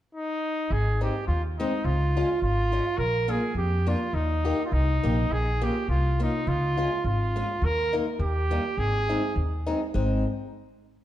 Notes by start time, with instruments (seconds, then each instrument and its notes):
0.15 trumpet D#4
0.70 upright bass G#1, trumpet G#4
1.01 steel-string acoustic guitar G#3 C4 D#4, trumpet G4
1.28 upright bass D#2, trumpet F4
1.59 steel-string acoustic guitar G#3 C4 D#4, trumpet D#4
1.84 upright bass C#2, trumpet F4
2.17 steel-string acoustic guitar G#3 C#4 F4
2.42 upright bass G#1, trumpet F4
2.72 steel-string acoustic guitar G#3 C#4 F4
2.98 upright bass A#1, trumpet A#4
3.28 steel-string acoustic guitar A#3 D4 F4, trumpet G#4
3.54 upright bass F2, trumpet G4
3.87 steel-string acoustic guitar A#3 D4 F4, trumpet F4
4.13 upright bass D#2, trumpet D#4
4.45 steel-string acoustic guitar A#3 D#4 G4
4.65 trumpet F4
4.72 upright bass C2, trumpet D#4
5.03 upright bass A#1, steel-string acoustic guitar A#3 D#4 G4
5.30 upright bass A#1, trumpet G#4
5.62 steel-string acoustic guitar A#3 C#4 F4, trumpet G4
5.88 upright bass C2, trumpet F4
6.19 steel-string acoustic guitar A#3 C#4 F4, trumpet D#4
6.47 upright bass C#2, trumpet F4
6.77 steel-string acoustic guitar G#3 C#4 F4
7.04 upright bass G#1, trumpet F4
7.36 steel-string acoustic guitar G#3 C#4 F4
7.62 upright bass D#2, trumpet A#4
7.93 steel-string acoustic guitar G#3 A#3 D#4
8.19 upright bass D#2, trumpet G4
8.51 steel-string acoustic guitar G3 A#3 D#4
8.77 upright bass G#1, trumpet G#4
9.09 steel-string acoustic guitar G#3 C4 D#4
9.36 upright bass D#2
9.66 steel-string acoustic guitar G#3 C4 D#4
9.94 upright bass G#1, steel-string acoustic guitar G#3 C4 D#4